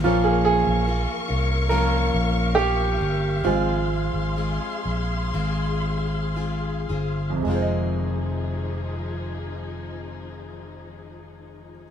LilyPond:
<<
  \new Staff \with { instrumentName = "String section" } { \time 4/4 \key f \minor \tempo 4 = 61 << { <bes' des'''>1 | <aes' c'''>1 | <f ees' aes'>1 | } \\ { f''1~ | f''1 | r1 | } >> }
  \new Staff \with { instrumentName = "Upright piano" } { \time 4/4 \key f \minor f'16 aes'16 aes'4. bes'4 g'4 | f'2. r4 | r1 | }
  \new Staff \with { instrumentName = "Upright piano" } { \time 4/4 \key f \minor <f bes des'>8 r2. r8 | <f aes c'>4. r2 r8 | <f, c aes f' c'' ees''>1 | }
  \new Staff \with { instrumentName = "Steel-string acoustic guitar" } { \time 4/4 \key f \minor <bes, f bes des' f'>4 <f bes des' f'>8 <bes des' f'>8 <bes, f bes des' f'>4 <f bes des' f'>8 <bes des' f'>8 | <aes c' f' aes'>4 <aes c' f' aes'>4 <aes c' f' aes'>4 <aes c' f' aes'>8 <c' f' aes'>8 | <f, c ees aes c' aes'>1 | }
  \new Staff \with { instrumentName = "Fingered electric bass" } { \clef bass \time 4/4 \key f \minor bes,,8. bes,,8 r16 c,4 bes,,4 g,,8 | aes,,8. aes,,8 r16 bes,,8 aes,,4. g,,8 | f,,1 | }
>>